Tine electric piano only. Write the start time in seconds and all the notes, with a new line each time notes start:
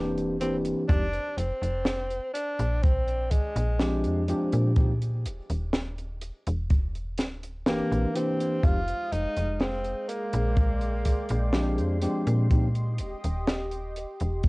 Already playing: E3 A#3 C4 D4 G4
0.41 E3 A#3 C4 D4 G4
0.89 F3 G#3 C4 D#4 G4
3.79 F3 G#3 C4 D4 G4
4.28 F3 G#3 C4 D4 G4
4.76 F3 A#3 C4 D#4 G4
7.66 E3 A#3 C4 D4 G4
8.14 E3 A#3 C4 D4 G4
8.63 F3 G#3 C4 D#4 G4
11.53 F3 G#3 C4 D4 G4
12.02 F3 G#3 C4 D4 G4
12.50 F3 A#3 C4 D#4 G4